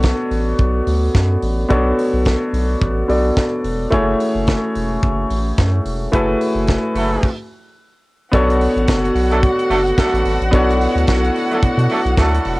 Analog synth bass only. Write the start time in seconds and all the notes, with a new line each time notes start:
Already playing: B1
0.31 A1
0.59 B1
0.87 D2
1.15 F#2
1.42 A1
1.70 B1
2.13 B1
2.53 B1
2.82 A1
3.09 B1
3.64 E1
3.92 F#1
4.35 F#1
4.76 E1
5.03 F#1
5.30 A1
5.58 F#2
5.85 E1
6.13 F#1
6.55 F#1
6.95 F#1
8.33 B1
8.76 A1
8.88 F#1
9.15 B1
9.70 F#1
10.13 A1
10.25 G#1
10.41 A1
10.53 B1
10.95 D2
11.08 B1
11.63 B2
11.78 B2
12.05 B1
12.18 D2
12.46 E1